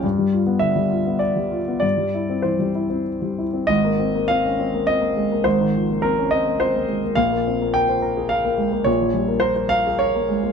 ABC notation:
X:1
M:3/4
L:1/16
Q:1/4=104
K:Ab
V:1 name="Grand piano"
z4 =e4 =d4 | =d4 c4 z4 | e4 f4 e4 | c4 B2 e2 c4 |
f4 g4 f4 | d4 c2 f2 d4 |]
V:2 name="Grand piano"
G,, G, F =B, =D, G, F B,2 G, F B, | G,, G, =E C =E, G, E C2 G, E C | [A,,,A,,] B, C B, C D C B, C B, A, B, | [A,,,A,,] E, F, B, C D C B, C B, A, B, |
[B,,,B,,] B, C B, B c B A B B, A, B, | [B,,,B,,] F, G, B, B c B A B B, A, B, |]